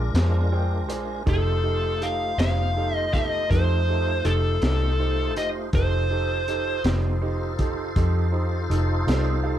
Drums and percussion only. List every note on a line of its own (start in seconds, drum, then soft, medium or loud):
0.15 snare medium
0.15 closed hi-hat medium
0.90 closed hi-hat medium
1.27 kick medium
1.27 closed hi-hat medium
2.02 closed hi-hat soft
2.39 snare loud
2.39 closed hi-hat medium
3.14 kick medium
3.14 snare soft
3.14 closed hi-hat soft
3.51 kick medium
3.51 closed hi-hat medium
4.25 closed hi-hat soft
4.62 snare medium
4.62 closed hi-hat medium
5.37 closed hi-hat medium
5.73 kick medium
5.73 closed hi-hat medium
6.48 closed hi-hat soft
6.84 snare medium
6.84 closed hi-hat medium
7.59 kick medium
7.59 closed hi-hat soft
7.96 kick medium
7.96 closed hi-hat medium
8.71 closed hi-hat medium
9.08 snare medium
9.08 closed hi-hat medium